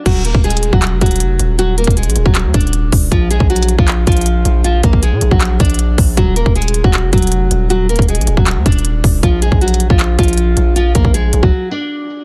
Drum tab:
CC |x-----------------------------------------------------------------------------------------------|------------------------------------------------------------------------------------------------|------------------------------------------------------------------------------------------------|------------------------------------------------------------------------------------------------|
HH |x-----------x-----------x---x---x---x-----------x-----------x--x--x--x--x-----------x-----------|x-----------x---x---x---x---x---x---x-----------x-----------x---x---x---x-----------o-----------|x-----------x-----------x---x---x---x-----------x-----------x--x--x--x--x-----------x-----------|x-----------x-----------x-----------x-----------x-----------x--x--x--x--x-----------o-----------|
CP |------------------------------------------------x-----------------------------------------------|------------------------------------------------x-----------------------------------------------|------------------------------------------------x-----------------------------------------------|------------------------------------------------x-----------------------------------------------|
BD |o-----------------o-----------------------o-----------------o-----------------------------------|------------------o-----------------------o-----------------o-----------------------o-----------|o-----------------o-----------------------o-----------------o-----------------------------------|------------o-----o-----------------------o-----------------o-----------------------o-----------|

CC |------------------------------------------------------------------------------------------------|------------------------------------------------------------------------------------------------|------------------------------------------------------------------------------------------------|------------------------------------------------------------------------------------------------|
HH |x-----------x-----------x---x---x---x-----------x-----------x--x--x--x--x-----------x-----------|x-----------x---x---x---x---x---x---x-----------x-----------x---x---x---x-----------o-----------|x-----------x-----------x---x---x---x-----------x-----------x--x--x--x--x-----------x-----------|x-----------x-----------x-----------x-----------------------------------------------------------|
CP |------------------------------------------------x-----------------------------------------------|------------------------------------------------x-----------------------------------------------|------------------------------------------------x-----------------------------------------------|------------------------------------------------------------------------------------------------|
BD |o-----------------o-----------------------o-----------------o-----------------------------------|------------------o-----------------------o-----------------o-----------------------o-----------|o-----------------o-----------------------o-----------------o-----------------------------------|------------o-----o-----------------------o-----------------------------------------------------|